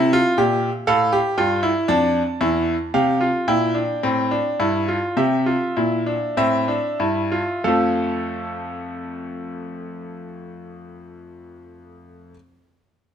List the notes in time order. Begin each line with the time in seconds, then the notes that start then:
Already playing: C3 E4 E5
0.13 F4
0.38 A#2 G4
0.87 A2 A4 F5
1.13 G4
1.38 G2 F4 G5
1.63 E4
1.88 F2 D4 A5
2.41 E2 E4
2.94 C3 G4 F5
3.21 F4
3.48 A#2 E4 G5
3.74 D4
4.03 A2 C4
4.31 D4
4.60 G2 E4
4.88 F4
5.17 C3 G4 E5
5.46 F4
5.77 A#2 E4
6.06 D4
6.37 A2 C4 E5
6.68 D4
7.00 G2 E4
7.32 F4
7.64 F2 F3 A3 A4 F5